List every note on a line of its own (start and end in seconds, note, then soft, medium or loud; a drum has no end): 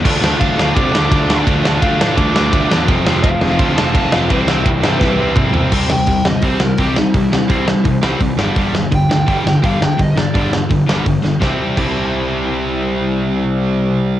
0.03 0.20 D2 medium
0.03 0.20 D3 loud
0.03 0.21 A3 loud
0.03 0.21 D4 loud
0.03 0.21 F4 loud
0.03 kick loud
0.03 crash loud
0.03 ride medium
0.21 0.37 D2 medium
0.21 0.38 D3 medium
0.21 0.39 A3 medium
0.21 0.39 D4 medium
0.21 0.40 F4 medium
0.21 snare loud
0.39 0.56 D2 loud
0.39 0.56 D3 loud
0.39 0.56 A3 medium
0.39 0.57 D4 loud
0.39 0.57 F4 loud
0.39 0.73 F5 medium
0.39 kick loud
0.39 ride medium
0.56 0.73 D2 loud
0.56 0.73 D3 medium
0.56 0.74 A3 medium
0.56 0.74 D4 medium
0.56 0.75 F4 medium
0.56 snare loud
0.74 0.91 C3 medium
0.74 0.91 D3 loud
0.74 0.93 A3 loud
0.74 0.92 D4 loud
0.74 0.92 F4 loud
0.74 1.42 D6 loud
0.74 kick loud
0.74 ride medium
0.92 1.08 D2 loud
0.92 1.09 D3 medium
0.92 1.11 A3 medium
0.92 1.10 D4 medium
0.92 1.11 F4 medium
0.92 snare loud
1.10 1.26 D2 medium
1.10 1.27 D3 medium
1.10 1.29 A3 loud
1.10 1.28 D4 loud
1.10 1.29 F4 loud
1.10 kick loud
1.10 ride medium
1.28 1.44 D2 medium
1.28 1.45 D3 loud
1.28 1.47 A3 loud
1.28 1.46 D4 loud
1.28 1.47 F4 loud
1.28 snare loud
1.46 1.62 D2 loud
1.46 1.63 D3 loud
1.46 1.64 A3 loud
1.46 1.63 D4 loud
1.46 1.64 F4 loud
1.46 kick loud
1.46 ride medium
1.64 1.80 D2 medium
1.64 1.79 D3 medium
1.64 1.81 A3 medium
1.64 1.80 D4 loud
1.64 1.82 F4 loud
1.64 snare loud
1.80 1.97 D2 medium
1.80 1.98 D3 medium
1.80 1.99 A3 loud
1.80 1.98 D4 loud
1.80 2.00 F4 loud
1.80 2.15 F5 medium
1.80 kick loud
1.80 ride medium
1.99 2.15 A2 medium
1.99 2.15 D3 medium
1.99 2.16 A3 medium
1.99 2.16 D4 medium
1.99 2.17 F4 medium
1.99 snare loud
2.16 2.33 D2 loud
2.16 2.34 D3 loud
2.16 2.34 A3 loud
2.16 2.34 D4 loud
2.16 2.35 F4 loud
2.16 2.84 D6 loud
2.16 kick loud
2.16 ride medium
2.34 2.50 D2 loud
2.34 2.51 D3 medium
2.34 2.52 A3 loud
2.34 2.52 D4 medium
2.34 2.53 F4 medium
2.34 snare loud
2.52 2.68 D2 loud
2.52 2.69 D3 loud
2.52 2.70 A3 loud
2.52 2.70 D4 medium
2.52 2.70 F4 loud
2.52 kick loud
2.52 ride medium
2.70 2.86 E2 loud
2.70 2.87 D3 loud
2.70 2.87 A3 loud
2.70 2.87 D4 loud
2.70 2.87 F4 loud
2.70 snare loud
2.87 3.04 F1 medium
2.87 3.04 F2 loud
2.87 3.04 C3 loud
2.87 3.04 F3 loud
2.87 3.05 A3 medium
2.87 3.06 C4 loud
2.87 3.05 F4 loud
2.87 kick loud
2.87 ride medium
3.05 3.21 F1 medium
3.05 3.21 F2 medium
3.05 3.22 C3 medium
3.05 3.22 F3 medium
3.05 3.22 A3 medium
3.05 3.23 C4 loud
3.05 3.23 F4 loud
3.05 snare loud
3.22 3.39 F1 medium
3.22 3.39 F2 loud
3.22 3.40 C3 loud
3.22 3.38 F3 loud
3.22 3.39 A3 loud
3.22 3.40 C4 loud
3.22 3.40 F4 loud
3.22 3.56 F5 loud
3.22 kick loud
3.22 ride medium
3.39 3.57 F1 loud
3.39 3.57 F2 medium
3.39 3.57 C3 medium
3.39 3.57 F3 medium
3.39 3.57 A3 medium
3.39 3.58 C4 medium
3.39 3.58 F4 loud
3.39 snare loud
3.58 3.74 D2 loud
3.58 3.76 F2 medium
3.58 3.76 C3 loud
3.58 3.75 F3 loud
3.58 3.75 A3 loud
3.58 3.76 C4 loud
3.58 3.76 F4 loud
3.58 3.76 C6 loud
3.58 kick loud
3.58 ride medium
3.76 3.92 F1 loud
3.76 3.93 F2 medium
3.76 3.94 C3 medium
3.76 3.92 F3 medium
3.76 3.93 A3 medium
3.76 3.94 C4 loud
3.76 3.93 F4 loud
3.76 4.12 A5 loud
3.76 snare loud
3.93 4.10 F1 loud
3.93 4.10 F2 loud
3.93 4.11 C3 medium
3.93 4.11 F3 loud
3.93 4.11 A3 loud
3.93 4.12 C4 loud
3.93 4.11 F4 loud
3.93 kick loud
3.93 ride medium
4.12 4.28 F1 medium
4.12 4.28 F2 loud
4.12 4.28 C3 medium
4.12 4.29 F3 loud
4.12 4.29 A3 medium
4.12 4.30 C4 loud
4.12 4.29 F4 loud
4.12 4.29 F5 loud
4.12 snare loud
4.30 4.46 C2 medium
4.30 4.46 C3 loud
4.30 4.47 E3 loud
4.30 4.47 G3 loud
4.30 4.48 C4 loud
4.30 4.48 E4 loud
4.30 4.99 C5 medium
4.30 kick loud
4.30 ride medium
4.47 4.63 C2 loud
4.47 4.64 C3 medium
4.47 4.65 E3 medium
4.47 4.65 G3 medium
4.47 4.65 C4 medium
4.47 4.65 E4 loud
4.47 snare loud
4.65 4.81 C2 medium
4.65 4.83 C3 loud
4.65 4.83 E3 loud
4.65 4.83 G3 medium
4.65 4.83 C4 loud
4.65 4.84 E4 loud
4.65 kick loud
4.65 ride medium
4.82 4.98 G2 medium
4.82 5.00 C3 medium
4.82 5.00 E3 loud
4.82 5.01 G3 medium
4.82 5.01 C4 medium
4.82 5.02 E4 medium
4.82 snare loud
4.99 5.16 C2 medium
4.99 5.18 C3 loud
4.99 5.19 E3 loud
4.99 5.19 G3 loud
4.99 5.19 C4 loud
4.99 5.33 B4 medium
4.99 kick loud
4.99 snare medium
5.03 5.20 E4 loud
5.17 5.33 C2 medium
5.17 5.36 C3 medium
5.17 5.37 E3 medium
5.17 5.37 G3 medium
5.17 5.37 C4 loud
5.17 5.37 E4 loud
5.36 5.52 C2 medium
5.36 5.54 C3 loud
5.36 5.54 E3 loud
5.36 5.55 G3 loud
5.36 5.55 C4 loud
5.36 5.55 E4 loud
5.36 kick loud
5.36 mid tom loud
5.52 5.69 C2 medium
5.52 5.71 C3 medium
5.52 5.71 E3 medium
5.52 5.72 G3 medium
5.52 floor tom loud
5.56 5.72 C4 loud
5.56 5.72 E4 loud
5.72 5.83 C2 medium
5.72 5.89 C3 medium
5.72 5.89 G3 medium
5.72 5.89 C4 medium
5.72 kick loud
5.72 crash loud
5.88 6.00 C2 medium
5.88 6.06 C3 medium
5.88 6.06 G3 medium
5.88 6.25 G5 medium
5.88 snare loud
6.07 6.19 C2 medium
6.07 6.23 C3 medium
6.07 6.24 G3 medium
6.07 kick loud
6.07 open hi-hat medium
6.25 6.36 G1 medium
6.25 6.41 C3 medium
6.25 6.42 G3 medium
6.25 6.43 D#5 medium
6.25 snare loud
6.42 6.54 C2 medium
6.42 6.60 C3 medium
6.42 6.60 G3 medium
6.42 6.60 C4 loud
6.42 6.62 C5 medium
6.42 kick loud
6.42 open hi-hat medium
6.60 6.71 C2 medium
6.60 6.77 C3 medium
6.60 6.78 G3 medium
6.60 6.78 A#4 medium
6.60 snare loud
6.78 7.01 C2 medium
6.78 6.95 C3 medium
6.78 6.95 G3 loud
6.78 6.96 C4 medium
6.78 6.96 G4 medium
6.78 kick loud
6.78 open hi-hat medium
6.97 7.13 C3 medium
6.97 7.13 G3 medium
6.97 7.14 D#4 medium
6.97 snare loud
7.14 7.36 C2 medium
7.14 7.30 C3 medium
7.14 7.30 G3 medium
7.14 7.84 E4 medium
7.14 kick loud
7.14 open hi-hat medium
7.33 7.48 C3 medium
7.33 7.48 G3 medium
7.33 snare loud
7.50 7.72 C2 medium
7.50 7.66 C3 medium
7.50 7.66 G3 medium
7.50 7.67 C4 medium
7.50 kick loud
7.50 open hi-hat medium
7.67 7.83 C3 medium
7.67 7.83 G3 medium
7.67 snare loud
7.85 7.96 C2 medium
7.85 8.01 C3 medium
7.85 8.01 G3 medium
7.85 kick loud
7.85 open hi-hat soft
8.03 8.14 C2 medium
8.03 8.19 C3 medium
8.03 8.20 G3 loud
8.03 8.20 C4 loud
8.03 snare loud
8.20 8.31 C2 medium
8.20 8.37 C3 medium
8.20 8.37 G3 medium
8.20 kick loud
8.20 open hi-hat medium
8.37 8.49 G1 medium
8.37 8.55 G2 medium
8.37 8.55 D3 loud
8.37 8.55 G3 loud
8.37 snare loud
8.56 8.67 G1 medium
8.56 8.73 G2 medium
8.56 8.73 D3 medium
8.56 8.73 G3 loud
8.56 kick loud
8.56 open hi-hat medium
8.73 8.85 G1 medium
8.73 8.90 G2 medium
8.73 8.90 D3 medium
8.73 snare loud
8.92 9.03 G1 medium
8.92 9.08 G2 medium
8.92 9.08 D3 medium
8.92 9.62 G5 loud
8.92 kick loud
8.92 open hi-hat medium
9.09 9.20 D2 medium
9.09 9.25 G2 medium
9.09 9.26 D3 medium
9.09 snare loud
9.26 9.39 G1 medium
9.26 9.43 G2 medium
9.26 9.44 D3 loud
9.26 9.44 G3 medium
9.26 kick loud
9.26 open hi-hat medium
9.44 9.56 G1 medium
9.44 9.61 G2 medium
9.44 9.61 D3 medium
9.44 snare loud
9.63 9.85 G1 medium
9.63 9.79 G2 medium
9.63 9.79 D3 medium
9.63 9.79 G3 loud
9.63 9.81 F5 medium
9.63 kick loud
9.63 open hi-hat medium
9.81 9.96 G2 medium
9.81 9.97 D3 medium
9.81 10.00 G5 medium
9.81 snare loud
9.97 10.21 G1 medium
9.97 10.14 G2 medium
9.97 10.14 D3 medium
9.97 10.17 D#5 medium
9.97 kick loud
9.97 open hi-hat medium
10.16 10.32 G2 medium
10.16 10.32 D3 medium
10.16 10.52 D5 medium
10.16 snare loud
10.33 10.56 G1 medium
10.33 10.50 G2 medium
10.33 10.50 D3 medium
10.33 10.51 G3 medium
10.33 kick loud
10.33 open hi-hat medium
10.52 10.68 G2 medium
10.52 10.68 D3 medium
10.52 snare loud
10.69 10.81 G1 medium
10.69 10.85 G2 medium
10.69 10.85 D3 medium
10.69 kick loud
10.69 open hi-hat soft
10.87 10.99 G1 medium
10.87 11.04 G2 medium
10.87 11.04 D3 medium
10.87 11.04 G3 medium
10.87 snare loud
11.05 11.17 G1 medium
11.05 11.21 G2 medium
11.05 11.21 D3 medium
11.05 kick loud
11.05 open hi-hat medium
11.22 11.34 G1 medium
11.22 11.39 G2 medium
11.22 11.39 D3 medium
11.22 snare medium
11.40 11.51 C2 medium
11.40 11.76 C3 medium
11.40 11.77 G3 medium
11.40 11.78 C4 medium
11.40 kick loud
11.40 snare medium
11.44 11.79 E4 medium
11.76 14.20 C2 medium
11.76 14.20 C3 medium
11.76 14.20 G3 medium
11.76 14.20 C4 medium
11.76 14.20 E4 medium
11.76 kick medium
11.76 crash medium